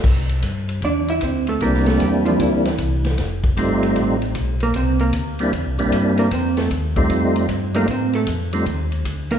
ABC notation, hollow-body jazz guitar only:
X:1
M:4/4
L:1/8
Q:"Swing" 1/4=153
K:C
V:1 name="Hollow-body jazz guitar"
z4 [Dd] [Ee] [Cc] [A,A] | [_B,_B] [A,A] [G,G] [F,F] [E,E]4 | z6 z [_B,_B] | [Cc] [_B,_B] z4 z [B,B] |
[Cc] [A,A] z4 z [_B,_B] | [Cc] [A,A] z4 z [_B,_B] |]